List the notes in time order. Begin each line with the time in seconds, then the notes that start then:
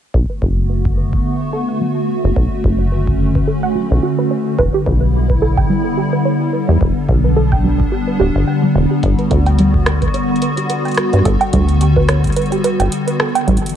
0.14 B1 D3 A3 B3 F#4, kick
0.30 B4
0.42 F#1 C#5, kick
0.70 B4
0.85 F#4, kick
0.97 B4
1.13 kick
1.41 B4
1.53 A4
1.68 F#5
1.81 F#3
2.08 F#4
2.24 F#1 B4
2.36 B1 C#4 C#5, kick
2.64 F#1 B4, kick
2.80 F#4
2.92 B4
3.07 kick
3.35 B4, kick
3.47 A4
3.63 F#5
3.75 F#3
3.91 B1
4.03 F#4
4.19 B4
4.31 C#5
4.59 E1 G3 B3 E4 B4, kick
4.74 G4
4.86 B1 B4, kick
5.30 B4, kick
5.42 A4
5.57 G5, kick
5.70 G3
5.97 G4
6.13 B4
6.25 C#5
6.53 B4
6.69 E2 G4
6.81 E1 D4 B4, kick
7.09 B1, kick
7.24 B4
7.36 A4
7.52 G5, kick
7.64 G3
7.80 kick
7.92 G4
8.07 B4
8.20 D1 G4
8.35 G1
8.47 G5
8.63 G3
8.75 E1 G4
8.91 G4
9.03 G1 D3 F#4, kick, closed hi-hat
9.19 B4, closed hi-hat
9.31 D2 A4, kick, closed hi-hat
9.46 G5, closed hi-hat
9.59 G3, closed hi-hat
9.74 kick
9.86 G4, cross-stick, closed hi-hat
10.02 B4, kick, closed hi-hat
10.14 C#5, closed hi-hat
10.36 closed hi-hat
10.42 B4, closed hi-hat
10.57 G4, closed hi-hat
10.70 B4, closed hi-hat
10.85 G5, closed hi-hat
10.88 closed hi-hat
10.91 closed hi-hat
10.94 cross-stick, closed hi-hat
10.97 closed hi-hat
11.13 G2 B4, closed hi-hat
11.25 G1 A4, kick, closed hi-hat
11.41 G5, closed hi-hat
11.53 D2 G3, kick, closed hi-hat
11.69 closed hi-hat
11.81 G4, closed hi-hat
11.96 B4, kick
12.09 C#5, cross-stick, closed hi-hat
12.24 kick, closed hi-hat
12.27 closed hi-hat
12.32 closed hi-hat
12.36 B4, closed hi-hat
12.42 closed hi-hat
12.46 closed hi-hat
12.52 G4, closed hi-hat
12.64 B4, closed hi-hat
12.80 G1 G5, closed hi-hat
12.92 closed hi-hat
13.07 B4, closed hi-hat
13.20 A4, cross-stick
13.35 G5, closed hi-hat
13.47 A1 E3 G3 A3 B3 A4, kick, closed hi-hat
13.57 closed hi-hat
13.66 closed hi-hat
13.69 closed hi-hat